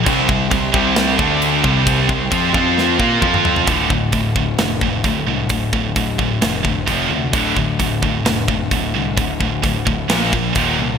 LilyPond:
<<
  \new Staff \with { instrumentName = "String section" } { \time 4/4 \key d \minor \tempo 4 = 131 << { <c' c'''>2~ <c' c'''>8 <d' d'''>4 <c' c'''>8~ | <c' c'''>1 | r1 | r1 |
r1 | r1 | } \\ { <g' g''>2~ <g' g''>8 <a' a''>4 <g' g''>8~ | <g' g''>4. <f' f''>4 <g' g''>8 <f' f''>4 | r1 | r1 |
r1 | r1 | } >> }
  \new Staff \with { instrumentName = "Distorted electric guitar" } { \clef bass \time 4/4 \key d \minor <c g c'>8 <c g>8 <c g>8 <c g c'>4 <d a d'>4 <c g c'>8~ | <c g c'>8 <c g>8 <f c' f'>8 <f c' f'>4 <bes f' bes'>8 <f c' f'>4 | r1 | r1 |
r1 | r1 | }
  \new Staff \with { instrumentName = "Distorted electric guitar" } { \clef bass \time 4/4 \key d \minor <c g c'>8 <c g>8 <c g>8 <c g c'>4 <d a d'>4 <c g c'>8~ | <c g c'>8 <c g>8 <f c' f'>8 <f c' f'>4 <bes f' bes'>8 <f c' f'>4 | <d, a, d>8 <d, a,>8 <d, a,>8 <d, a,>8 <d, a,>8 <d, a,>8 <d, a,>8 <d, a,>8 | <d, a,>8 <d, a,>8 <d, a,>8 <d, a,>8 <d, a,>8 <d, a,>8 <f, c f>8 <f, c>8 |
<d, a, d>8 <d, a,>8 <d, a,>8 <d, a,>8 <d, a,>8 <d, a,>8 <d, a,>8 <d, a,>8 | <d, a,>8 <d, a,>8 <d, a,>8 <d, a,>8 <bes, f bes>8 <bes, f>8 <ees, bes, ees>8 <ees, bes,>8 | }
  \new Staff \with { instrumentName = "Distorted electric guitar" } { \clef bass \time 4/4 \key d \minor <c g c'>8 <c g>8 <c g>8 <c g c'>4 <d a d'>4 <c g c'>8~ | <c g c'>8 <c g>8 <f c' f'>8 <f c' f'>4 <bes f' bes'>8 <f c' f'>4 | <d, a, d>8 <d, a,>8 <d, a,>8 <d, a,>8 <d, a,>8 <d, a,>8 <d, a,>8 <d, a,>8 | <d, a,>8 <d, a,>8 <d, a,>8 <d, a,>8 <d, a,>8 <d, a,>8 <f, c f>8 <f, c>8 |
<d, a, d>8 <d, a,>8 <d, a,>8 <d, a,>8 <d, a,>8 <d, a,>8 <d, a,>8 <d, a,>8 | <d, a,>8 <d, a,>8 <d, a,>8 <d, a,>8 <bes, f bes>8 <bes, f>8 <ees, bes, ees>8 <ees, bes,>8 | }
  \new Staff \with { instrumentName = "Picked electric bass" } { \clef bass \time 4/4 \key d \minor c,8 c,8 c,8 c,4 d,4 c,8~ | c,8 c,8 f,8 f,4 bes,8 f,4 | d,,8 d,,8 d,,4 f,,4 d,,8 c,8 | d,,8 d,,8 d,,4 f,,4 f,,8 d,8 |
d,,8 d,,8 d,,4 f,,4 d,,8 c,8 | d,,8 d,,8 d,,4 bes,,4 ees,,8 c,8 | }
  \new DrumStaff \with { instrumentName = "Drums" } \drummode { \time 4/4 <cymc bd>8 bd8 <cymc bd>8 bd8 <cymc sn>8 bd8 cymc8 bd8 | <cymc bd>8 bd8 <cymc bd>8 bd8 sn8 bd8 bd16 toml16 tomfh16 tomfh16 | <hho bd>8 bd8 <hho bd>8 bd8 <hho sn>8 bd8 <hho bd>4 | <hho bd>8 bd8 <hho bd>8 bd8 <hho sn>8 bd8 <hho bd>4 |
<hho bd>8 bd8 <hho bd>8 bd8 <hho sn>8 bd8 <hho bd>4 | <hho bd>8 bd8 <hho bd>8 bd8 <hho sn>8 bd8 <hho bd>4 | }
>>